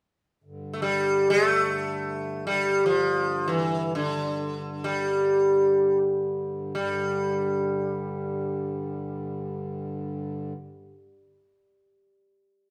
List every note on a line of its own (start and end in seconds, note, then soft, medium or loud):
0.44 6.73 G2 soft
0.44 6.73 D3 medium
0.73 0.81 A3 soft
0.82 1.30 G3 medium
1.30 2.46 A3 medium
2.47 2.85 G3 medium
2.86 3.49 F3 medium
3.48 3.95 E3 medium
3.95 4.88 D3 medium
4.84 5.97 G3 medium
6.74 10.53 G2 medium
6.74 10.53 D3 medium
6.74 10.53 G3 medium